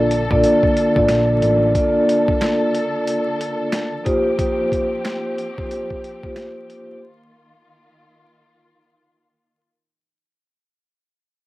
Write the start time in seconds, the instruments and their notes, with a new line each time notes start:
Already playing: picked electric bass A#1, string section D3 A#3 A4, vibraphone A#3 D4 F4 A4 D5
0.11 closed hi-hat
0.31 picked electric bass A#1, vibraphone A#3 D4 F4 A4 D5, kick
0.44 closed hi-hat
0.63 kick
0.77 closed hi-hat
0.96 picked electric bass A1, vibraphone A#3 D4 F4 A4 D5, kick
1.08 picked electric bass A#1, finger snap, snare, closed hi-hat
1.42 picked electric bass A1, closed hi-hat
1.75 vibraphone A#3 D4 F4 A4 D5, string section A4, kick, closed hi-hat
2.09 closed hi-hat
2.28 kick
2.41 finger snap, snare, closed hi-hat
2.75 closed hi-hat
3.07 closed hi-hat
3.41 closed hi-hat
3.72 finger snap, snare, closed hi-hat
4.04 string section F3 C4 G4, vibraphone A#3 D#4 F4 G4 C5, kick, closed hi-hat
4.37 vibraphone A#3 D#4 F4 G4 C5, kick, closed hi-hat
4.72 kick, closed hi-hat
5.05 finger snap, snare, closed hi-hat
5.38 closed hi-hat
5.58 vibraphone A#3 D#4 F4 G4 C5, kick
5.71 closed hi-hat
5.91 kick
6.04 closed hi-hat
6.24 vibraphone A#3 D#4 F4 G4 C5, kick
6.36 finger snap, snare, closed hi-hat
6.70 closed hi-hat
7.03 string section D#3 A#3 F4